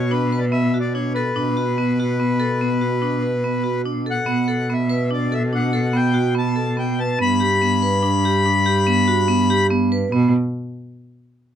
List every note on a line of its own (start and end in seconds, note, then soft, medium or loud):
0.00 1.36 B2 medium
0.00 0.12 C#5 medium
0.11 0.29 D4 medium
0.11 0.40 B4 medium
0.33 0.51 B4 medium
0.39 0.45 D5 medium
0.52 0.71 B3 medium
0.52 0.78 E5 medium
0.74 0.92 F#4 medium
0.80 0.93 D5 medium
0.93 1.13 D4 medium
0.93 1.13 C#5 medium
1.14 1.34 A4 medium
1.14 3.82 B4 medium
1.36 4.24 B2 medium
1.36 1.54 D4 medium
1.57 1.75 F#4 medium
1.78 1.96 B3 medium
2.00 2.18 F#4 medium
2.20 2.38 B3 medium
2.40 2.58 A4 medium
2.61 2.80 B3 medium
2.81 3.00 F#4 medium
3.02 3.21 D4 medium
3.23 3.42 B4 medium
3.44 3.63 B3 medium
3.64 3.83 F#4 medium
3.85 4.04 D4 medium
4.06 4.25 A4 medium
4.10 4.73 F#5 medium
4.26 7.22 B2 medium
4.26 4.45 B3 medium
4.48 4.67 A4 medium
4.70 4.88 B3 medium
4.70 5.10 E5 medium
4.89 5.08 B4 medium
5.11 5.29 D4 medium
5.11 5.34 D5 medium
5.32 5.50 A4 medium
5.32 5.43 E5 medium
5.53 5.71 D4 medium
5.53 5.97 F#5 medium
5.73 5.92 A4 medium
5.93 6.12 B3 medium
5.93 6.34 G5 medium
6.14 6.33 F#4 medium
6.35 6.54 B3 medium
6.35 6.76 A5 medium
6.56 6.75 A4 medium
6.77 6.96 B3 medium
6.77 7.00 G5 medium
6.99 7.17 B4 medium
6.99 7.19 A5 medium
7.19 10.08 G2 medium
7.19 7.38 B3 medium
7.19 9.67 B5 loud
7.40 7.59 G4 medium
7.62 7.80 B3 medium
7.82 8.01 B4 medium
8.03 8.21 D4 medium
8.25 8.43 G4 medium
8.46 8.64 D4 medium
8.66 8.84 G4 medium
8.87 9.05 B3 medium
9.08 9.26 F#4 medium
9.28 9.46 B3 medium
9.50 9.68 G4 medium
9.71 9.88 B3 medium
9.92 10.10 B4 medium
10.12 10.31 B2 medium
10.12 10.31 B3 medium